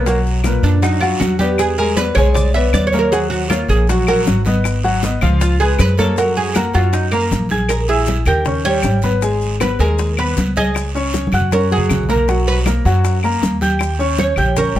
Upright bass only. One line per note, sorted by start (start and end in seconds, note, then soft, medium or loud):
0.00 0.57 B1 medium
0.63 1.17 F#2 medium
1.20 2.10 E2 loud
2.16 2.69 B1 medium
2.73 3.63 D#2 medium
3.69 4.22 A#1 loud
4.26 5.16 G#1 medium
5.22 5.75 C#2 loud
5.79 6.69 F#2 loud
6.75 7.28 F#2 medium
7.31 8.21 A#1 medium
8.26 8.80 D#2 loud
8.83 9.73 G#1 medium
9.79 10.33 D#2 loud
10.37 11.27 C#2 medium
11.32 11.86 F#2 medium
11.89 12.79 B1 medium
12.85 13.38 F#2 loud
13.42 14.32 D#2 medium
14.37 14.73 A#1 medium
14.75 14.79 A#1 medium